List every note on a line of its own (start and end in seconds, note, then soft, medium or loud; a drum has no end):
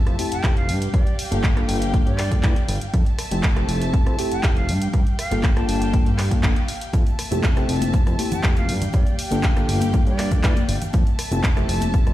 0.00 0.15 A3 medium
0.00 0.16 C4 medium
0.00 0.16 E4 medium
0.00 0.16 G4 loud
0.00 0.67 E5 medium
0.00 0.67 A5 medium
0.07 0.16 F2 medium
0.07 cross-stick medium
0.07 closed hi-hat soft
0.18 0.41 A3 medium
0.18 0.41 C4 medium
0.18 0.41 E4 medium
0.18 0.41 G4 medium
0.18 open hi-hat loud
0.32 0.41 F1 soft
0.32 0.54 G5 medium
0.32 closed hi-hat medium
0.43 0.70 F1 medium
0.43 0.67 A3 medium
0.43 0.67 C4 medium
0.43 0.67 E4 medium
0.43 0.67 G4 medium
0.43 kick loud
0.43 clap loud
0.43 closed hi-hat medium
0.56 0.74 F5 loud
0.56 closed hi-hat soft
0.68 0.89 G2 medium
0.68 2.91 G4 medium
0.68 2.91 F5 medium
0.68 2.91 G5 medium
0.68 open hi-hat loud
0.82 closed hi-hat soft
0.93 1.04 G2 loud
0.93 1.16 D5 loud
0.93 kick loud
0.93 closed hi-hat medium
1.07 closed hi-hat soft
1.19 open hi-hat loud
1.31 1.65 G1 medium
1.31 1.53 A#3 medium
1.31 1.53 D4 medium
1.31 1.54 F4 medium
1.31 1.54 A4 loud
1.31 closed hi-hat medium
1.44 kick loud
1.44 clap loud
1.44 closed hi-hat medium
1.56 1.91 A#3 medium
1.56 1.91 D4 medium
1.56 1.91 F4 medium
1.56 1.91 A4 medium
1.56 cross-stick medium
1.56 closed hi-hat soft
1.69 2.02 G1 medium
1.69 open hi-hat loud
1.82 closed hi-hat medium
1.93 2.09 A#3 medium
1.93 2.09 D4 medium
1.93 2.09 F4 medium
1.93 2.09 A4 medium
1.93 kick loud
1.93 closed hi-hat medium
2.06 2.40 G2 medium
2.06 2.76 D5 loud
2.06 closed hi-hat soft
2.18 cross-stick medium
2.18 clap medium
2.18 open hi-hat loud
2.31 2.55 A#3 medium
2.31 2.55 D4 medium
2.31 2.55 F4 medium
2.31 2.56 A4 loud
2.31 kick medium
2.31 closed hi-hat medium
2.43 2.54 E3 medium
2.43 kick loud
2.43 clap loud
2.43 closed hi-hat medium
2.56 closed hi-hat soft
2.69 2.79 G1 loud
2.69 open hi-hat loud
2.81 closed hi-hat medium
2.93 3.04 F2 loud
2.93 4.67 E5 medium
2.93 4.67 A5 medium
2.93 kick loud
2.93 closed hi-hat medium
3.06 closed hi-hat soft
3.19 cross-stick medium
3.19 open hi-hat loud
3.31 3.65 F1 medium
3.31 3.53 A3 medium
3.31 3.53 C4 medium
3.31 3.54 E4 medium
3.31 3.54 G4 medium
3.31 closed hi-hat medium
3.43 kick loud
3.43 clap loud
3.43 closed hi-hat medium
3.56 4.15 A3 loud
3.56 4.16 C4 medium
3.56 4.16 E4 medium
3.56 4.16 G4 loud
3.56 cross-stick medium
3.56 closed hi-hat soft
3.69 4.02 F1 medium
3.69 open hi-hat loud
3.82 closed hi-hat medium
3.94 kick loud
3.94 closed hi-hat medium
4.06 4.16 F2 loud
4.06 cross-stick medium
4.06 closed hi-hat soft
4.18 4.40 A3 medium
4.18 4.41 C4 medium
4.18 4.41 E4 medium
4.18 4.41 G4 medium
4.18 open hi-hat loud
4.32 4.41 F1 soft
4.32 4.54 G5 medium
4.32 closed hi-hat medium
4.43 4.70 F1 medium
4.43 4.67 A3 medium
4.43 4.67 C4 medium
4.43 4.67 E4 medium
4.43 4.67 G4 loud
4.43 kick loud
4.43 clap loud
4.43 closed hi-hat medium
4.56 4.74 F5 loud
4.56 closed hi-hat soft
4.68 4.89 G2 medium
4.68 6.91 G4 medium
4.68 6.91 F5 medium
4.68 6.91 G5 medium
4.68 open hi-hat loud
4.82 closed hi-hat medium
4.93 5.04 G2 loud
4.93 kick loud
4.93 closed hi-hat medium
5.07 closed hi-hat soft
5.18 5.41 F5 medium
5.18 cross-stick medium
5.18 open hi-hat loud
5.31 5.65 G1 medium
5.31 5.53 A#3 medium
5.31 5.53 D4 medium
5.31 5.53 F4 medium
5.31 5.54 A4 medium
5.31 closed hi-hat medium
5.43 kick loud
5.43 clap loud
5.43 closed hi-hat medium
5.56 5.91 A#3 medium
5.56 5.91 D4 medium
5.56 5.91 F4 medium
5.56 5.91 A4 medium
5.56 5.66 A5 medium
5.56 cross-stick medium
5.56 closed hi-hat soft
5.68 6.02 G1 medium
5.68 6.06 A5 medium
5.68 open hi-hat loud
5.82 closed hi-hat medium
5.93 6.09 A#3 medium
5.93 6.09 D4 medium
5.93 6.09 F4 medium
5.93 6.09 A4 loud
5.93 kick loud
5.93 closed hi-hat medium
6.06 6.40 G2 medium
6.06 closed hi-hat soft
6.18 cross-stick medium
6.18 clap medium
6.18 open hi-hat loud
6.31 6.55 A#3 medium
6.31 6.55 D4 medium
6.31 6.55 F4 medium
6.31 6.55 A4 medium
6.31 kick medium
6.31 closed hi-hat medium
6.43 6.54 G1 medium
6.43 kick loud
6.43 clap loud
6.43 closed hi-hat medium
6.56 closed hi-hat soft
6.68 open hi-hat loud
6.81 closed hi-hat medium
6.93 7.04 F2 loud
6.93 8.67 E5 medium
6.93 8.67 A5 medium
6.93 kick loud
6.93 closed hi-hat medium
6.93 high conga medium
6.93 shaker medium
7.07 closed hi-hat soft
7.07 shaker soft
7.19 cross-stick medium
7.19 open hi-hat loud
7.31 7.65 F1 medium
7.31 7.53 A3 medium
7.31 7.53 C4 medium
7.31 7.53 E4 medium
7.31 7.54 G4 medium
7.31 closed hi-hat medium
7.31 high conga medium
7.31 shaker medium
7.44 kick loud
7.44 clap loud
7.44 closed hi-hat medium
7.44 shaker medium
7.56 8.15 A3 loud
7.56 8.16 C4 medium
7.56 8.16 E4 medium
7.56 8.16 G4 loud
7.56 cross-stick medium
7.56 closed hi-hat soft
7.56 shaker soft
7.69 8.02 F1 medium
7.69 open hi-hat loud
7.81 closed hi-hat medium
7.81 high conga loud
7.81 shaker medium
7.94 kick loud
7.94 closed hi-hat medium
7.94 shaker medium
8.06 8.16 F2 medium
8.06 cross-stick medium
8.06 closed hi-hat soft
8.06 shaker soft
8.18 8.41 A3 medium
8.18 8.41 C4 medium
8.18 8.41 E4 medium
8.18 8.41 G4 medium
8.18 open hi-hat loud
8.18 high conga medium
8.31 8.41 F1 soft
8.31 8.54 G5 medium
8.31 closed hi-hat medium
8.31 low conga loud
8.31 shaker medium
8.43 8.70 F1 medium
8.43 8.67 A3 medium
8.43 8.67 C4 medium
8.43 8.67 G4 loud
8.43 kick loud
8.43 clap loud
8.43 closed hi-hat medium
8.43 shaker medium
8.56 8.74 F5 medium
8.56 closed hi-hat soft
8.56 high conga loud
8.56 shaker soft
8.68 8.89 G2 medium
8.68 10.91 G4 medium
8.68 10.91 F5 medium
8.68 10.91 G5 medium
8.68 open hi-hat loud
8.82 closed hi-hat medium
8.82 low conga medium
8.82 shaker medium
8.93 9.04 G2 loud
8.93 9.16 D5 medium
8.93 kick loud
8.93 closed hi-hat medium
8.93 high conga medium
8.93 shaker medium
9.07 closed hi-hat soft
9.07 shaker soft
9.19 open hi-hat loud
9.31 9.65 G1 medium
9.31 9.53 A#3 medium
9.31 9.53 D4 medium
9.31 9.54 F4 medium
9.31 9.54 A4 loud
9.31 closed hi-hat medium
9.31 high conga medium
9.31 shaker medium
9.43 kick loud
9.43 clap loud
9.43 closed hi-hat medium
9.43 shaker medium
9.56 9.91 A#3 medium
9.56 9.91 D4 medium
9.56 9.91 F4 medium
9.56 9.91 A4 medium
9.56 cross-stick medium
9.56 closed hi-hat soft
9.56 shaker soft
9.69 10.02 G1 loud
9.69 open hi-hat loud
9.81 closed hi-hat medium
9.81 high conga loud
9.81 shaker medium
9.93 10.09 A#3 medium
9.93 10.09 D4 medium
9.93 10.09 F4 medium
9.93 10.09 A4 medium
9.93 kick loud
9.93 closed hi-hat medium
9.93 shaker medium
10.06 10.40 G2 medium
10.06 10.76 D5 loud
10.06 closed hi-hat soft
10.06 shaker soft
10.19 cross-stick medium
10.19 clap medium
10.19 open hi-hat loud
10.19 high conga medium
10.31 10.55 A#3 medium
10.31 10.55 D4 medium
10.31 10.55 F4 medium
10.31 10.56 A4 loud
10.31 kick medium
10.31 closed hi-hat medium
10.31 low conga loud
10.31 shaker medium
10.44 10.54 E3 loud
10.44 kick loud
10.44 clap loud
10.44 closed hi-hat medium
10.44 shaker medium
10.56 closed hi-hat soft
10.56 high conga medium
10.56 shaker soft
10.69 10.79 G1 loud
10.69 open hi-hat loud
10.82 closed hi-hat medium
10.82 low conga medium
10.82 shaker medium
10.93 11.04 F2 loud
10.93 12.14 E5 medium
10.93 12.14 A5 medium
10.93 kick loud
10.93 closed hi-hat medium
10.93 high conga loud
10.93 shaker medium
11.07 closed hi-hat soft
11.07 shaker soft
11.19 cross-stick medium
11.19 open hi-hat loud
11.31 11.65 F1 medium
11.31 11.53 A3 medium
11.31 11.53 C4 medium
11.31 11.54 E4 medium
11.31 11.54 G4 medium
11.31 closed hi-hat medium
11.31 high conga medium
11.31 shaker medium
11.44 kick loud
11.44 clap loud
11.44 closed hi-hat medium
11.44 shaker medium
11.56 12.14 A3 medium
11.56 12.14 C4 medium
11.56 12.14 E4 medium
11.56 12.14 G4 loud
11.56 cross-stick medium
11.56 closed hi-hat soft
11.56 shaker soft
11.69 12.02 F1 medium
11.69 open hi-hat loud
11.81 closed hi-hat medium
11.81 high conga loud
11.81 shaker medium
11.94 kick loud
11.94 closed hi-hat soft
11.94 shaker medium
12.06 12.14 F2 medium
12.06 cross-stick medium
12.06 closed hi-hat soft
12.06 shaker soft